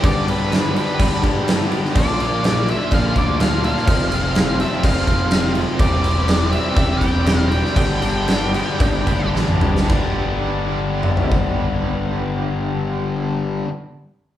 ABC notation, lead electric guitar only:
X:1
M:4/4
L:1/8
Q:1/4=123
K:Gmix
V:1 name="Lead electric guitar"
d B2 B2 z3 | d2 d e f d f f- | f3 e f3 z | d3 e e g2 g- |
g6 z2 | z8 | z8 |]